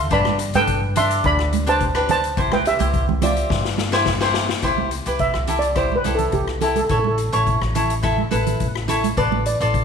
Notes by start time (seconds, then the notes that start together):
Already playing: C2
0.10 G2 D4 G4 B4 D5 B5, kick, closed hi-hat
0.25 cross-stick, high conga
0.39 closed hi-hat
0.54 G2 D4 G4 A4 B4 G5, closed hi-hat, high conga
0.67 kick, closed hi-hat
0.96 D4 G4 D5 E5 C6, closed hi-hat, low conga
1.11 closed hi-hat
1.24 D2 D5 B5, kick, closed hi-hat
1.39 cross-stick
1.53 closed hi-hat, high conga
1.67 D4 G4 B4 C5 A5, closed hi-hat
1.80 kick, closed hi-hat
1.95 D4 G4 B4, cross-stick
2.09 C5 A5, closed hi-hat, low conga
2.24 closed hi-hat
2.37 C2 E4 G4 C5, kick, closed hi-hat
2.52 B4 G5, cross-stick, high conga
2.65 G4 E5, closed hi-hat
2.79 C2 E4 G4 C5, closed hi-hat, high conga
2.94 kick, closed hi-hat
3.09 high conga, low conga
3.22 F4 G4 C5 D5 E5, closed hi-hat, high conga, low conga
3.37 closed hi-hat
3.50 G2, kick, snare
3.65 snare
3.78 snare, high conga
3.92 E4 G4 C5, snare
4.06 kick, snare
4.21 E4 G4 C5, snare
4.34 snare
4.49 snare
4.62 C2 E4 G4 C5, kick, closed hi-hat
4.78 high conga
4.91 closed hi-hat
5.06 C2 E4 G4 B4, closed hi-hat
5.19 E5, kick, closed hi-hat
5.34 C2, cross-stick
5.47 E4 G4 A4, closed hi-hat, low conga
5.59 D5, closed hi-hat
5.76 E4 G4 C5, kick, cross-stick, closed hi-hat
5.92 B4, high conga
6.04 C2 E4 G4 A4, closed hi-hat, high conga
6.15 A4, closed hi-hat, low conga
6.32 C2 G4, kick, closed hi-hat
6.48 cross-stick
6.61 E4 G4 A4, closed hi-hat, low conga
6.68 A4
6.76 A4, closed hi-hat, high conga
6.84 A4
6.89 A1 E4 A4 C#5, kick, closed hi-hat
6.99 A4
7.04 A4, high conga
7.18 closed hi-hat
7.32 A1 E4 A4 C#5, closed hi-hat
7.47 kick, closed hi-hat
7.61 A1, cross-stick
7.75 E4 A4 C#5, closed hi-hat, low conga
7.90 closed hi-hat
8.03 E4 A4 E5, kick, cross-stick, closed hi-hat
8.18 high conga
8.31 A1 E4 A4 B4, closed hi-hat, high conga
8.47 closed hi-hat, low conga
8.60 A1, kick, closed hi-hat
8.75 cross-stick
8.88 E4 A4 C#5, closed hi-hat, low conga
9.04 closed hi-hat, high conga
9.17 A1 F4 A4 B4 D5, kick, closed hi-hat
9.32 high conga
9.46 D5, closed hi-hat
9.60 A1 F4 A4 D5, closed hi-hat
9.74 kick, closed hi-hat